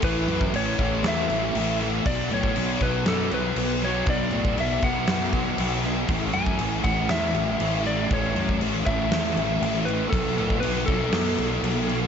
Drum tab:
CC |x-x-x-x-x-x-x-x-|x-x-x-x-x-x-x-x-|x-x-x-x-x-x-x-x-|x-x-x-x-x-x-x-x-|
SD |--------o-----o-|--------o-----o-|--------o-----o-|--------o-----o-|
BD |o--o--o---------|o--o--o---------|o--o--o---o-----|o--o--o---------|

CC |x-x-x-x-x-x-x-x-|x-x-x-x-x-x-x-x-|
SD |--------o-------|--------o-------|
BD |o--o--o---------|o--o--o---------|